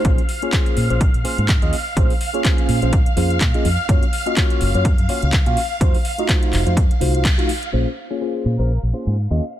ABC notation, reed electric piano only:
X:1
M:4/4
L:1/16
Q:"Swing 16ths" 1/4=125
K:Bbm
V:1 name="Reed electric piano"
z3 [B,DFAd] [Fc]3 [B,DFAc] z2 [B,DFAc]2 z [B,DFAe] z2 | [B,DFAc] z2 [B,DFAd] [B,Fc]3 [B,DFAc] z2 [B,DFAc]2 z [B,DFAe] z2 | [B,DFGd] z2 [B,DFGe] [B,DFGd]3 [B,DFGd] z2 [B,DFGd]2 z [B,DFGf] z2 | [=A,EFGc] z2 [A,EFGe] [A,EFc]3 [A,EFGc] z2 [A,EFGc]2 z [A,EFGf] z2 |
[B,DFAc] z2 [B,DFAd] [B,DFAc]3 [B,DFAc] z2 [B,DFAc]2 z [B,DFAe] z2 |]